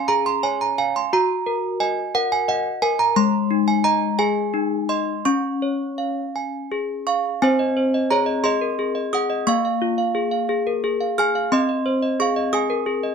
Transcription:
0.00 1.08 C#4 medium
0.00 0.30 F5 medium
0.08 0.64 G#4 medium
0.08 0.26 A#5 loud
0.26 0.43 C6 loud
0.43 0.98 C#5 medium
0.43 0.61 G#5 loud
0.61 0.78 A#5 medium
0.78 1.12 F5 medium
0.78 0.95 G#5 medium
0.96 1.13 C6 loud
1.13 3.13 F#4 medium
1.13 1.78 A#5 loud
1.46 2.01 A#4 medium
1.80 2.35 D#5 medium
1.80 2.13 G#5 loud
2.15 2.69 A#4 medium
2.15 2.32 F#5 loud
2.32 2.49 G#5 loud
2.48 3.03 D#5 medium
2.48 2.82 F#5 loud
2.82 3.17 A#4 medium
2.82 3.00 G#5 loud
2.99 3.17 A#5 loud
3.16 5.21 G#3 loud
3.16 3.65 C6 loud
3.51 4.05 D#4 medium
3.68 3.85 G#5 loud
3.84 4.40 D#5 medium
3.84 4.17 A#5 loud
4.19 4.75 G#4 medium
4.19 4.86 G#5 loud
4.54 5.11 D#4 medium
4.89 5.25 D#5 medium
4.89 5.24 C6 medium
5.25 7.38 C#4 medium
5.25 6.31 C#6 loud
5.62 6.21 C#5 soft
5.98 6.56 F5 medium
6.36 6.93 G#5 medium
6.72 7.28 G#4 medium
7.07 7.40 F5 medium
7.07 7.40 C#6 medium
7.42 9.43 C4 medium
7.42 7.75 C5 medium
7.42 8.07 G#5 loud
7.59 7.86 D#5 medium
7.77 8.04 C5 medium
7.94 8.21 D#5 medium
8.11 8.38 G#4 medium
8.11 8.43 C#5 medium
8.11 8.43 A#5 loud
8.26 8.44 D#5 medium
8.44 8.71 G#4 medium
8.44 8.94 D#5 medium
8.44 9.09 C6 loud
8.61 8.78 A#4 medium
8.79 9.06 G#4 medium
8.95 9.22 D#5 medium
9.13 9.40 G#4 medium
9.13 9.45 F#5 medium
9.13 9.45 D#6 loud
9.30 9.47 D#5 medium
9.47 11.47 A#3 medium
9.47 9.64 F5 medium
9.47 10.79 C#6 loud
9.65 9.91 F5 medium
9.82 10.08 F4 medium
9.98 10.25 F5 medium
10.15 10.42 G#4 medium
10.31 10.58 F5 medium
10.49 10.76 G#4 medium
10.67 10.83 A#4 medium
10.84 11.10 G#4 medium
11.01 11.27 F5 medium
11.18 11.45 G#4 medium
11.18 11.50 G#5 medium
11.18 11.50 F6 loud
11.35 11.52 F5 medium
11.52 13.15 C4 medium
11.52 11.68 D#5 medium
11.52 12.17 C6 loud
11.69 11.95 D#5 medium
11.86 12.12 C5 medium
12.03 12.29 D#5 medium
12.20 12.46 G#4 medium
12.20 12.52 F5 medium
12.20 12.52 C#6 loud
12.36 12.63 D#5 medium
12.53 12.80 G#4 medium
12.53 13.15 G#5 medium
12.53 13.15 D#6 loud
12.70 12.86 A#4 medium
12.86 13.13 G#4 medium
13.03 13.15 D#5 medium

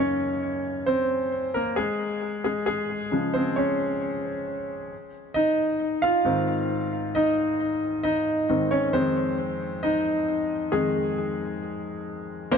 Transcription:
0.00 0.13 F#2 soft
0.00 0.13 C#3 soft
0.00 0.13 A#3 soft
0.00 1.80 C#4 medium
0.00 1.80 D#4 medium
0.00 1.80 C#5 medium
0.00 1.79 D#5 medium
0.86 1.51 C4 medium
0.86 1.51 C5 medium
1.54 1.77 A#3 medium
1.54 1.78 A#4 medium
1.76 2.41 G#3 medium
1.76 2.40 G#4 medium
2.44 2.66 G#3 medium
2.44 2.65 G#4 medium
2.66 3.11 G#3 medium
2.66 3.36 G#4 medium
3.12 3.71 C#3 soft
3.12 3.72 F3 soft
3.12 3.72 G#3 soft
3.34 3.56 C4 medium
3.34 3.57 C5 medium
3.56 4.88 C#4 medium
3.56 4.87 C#5 medium
5.34 5.99 D#4 medium
5.34 5.98 D#5 medium
6.02 7.11 F4 medium
6.02 7.18 F5 medium
6.25 6.85 G#2 soft
6.25 6.85 D#3 soft
6.25 6.85 C4 medium
7.15 8.01 D#4 medium
7.15 8.02 D#5 medium
8.03 8.68 D#4 medium
8.03 8.73 D#5 medium
8.49 8.90 G#2 soft
8.49 8.90 D#3 soft
8.49 8.91 C4 soft
8.71 8.93 C#4 medium
8.71 8.95 C#5 medium
8.93 9.53 F2 medium
8.93 9.53 D#3 soft
8.93 9.54 G#3 medium
8.93 9.80 C4 medium
8.93 9.86 C5 medium
9.83 10.70 D#4 medium
9.83 10.76 D#5 medium
10.72 11.14 F2 soft
10.72 11.14 D#3 soft
10.72 12.04 G#3 medium
10.72 12.03 G#4 medium
12.51 12.58 A#1 medium
12.51 12.58 A#2 medium
12.51 12.58 A#3 loud
12.51 12.58 C#4 medium
12.51 12.58 C5 loud

